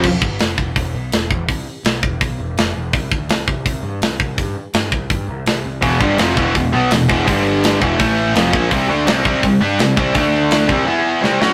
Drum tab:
CC |x-------|--------|--------|--------|
HH |--o-o-o-|o-o-o-o-|o-o-o-o-|o-o-o-o-|
SD |--o---o-|--o---o-|--o---o-|--o---o-|
BD |oo-oo--o|o--oo---|oo-oo--o|o--oo---|

CC |--------|--------|--------|--------|
HH |o-o-o-o-|o-o-o-o-|o-o-o-o-|o-o-----|
SD |--o---o-|--o---o-|--o---o-|--o---oo|
BD |oo-oo--o|o--oo--o|o--oo--o|o--o----|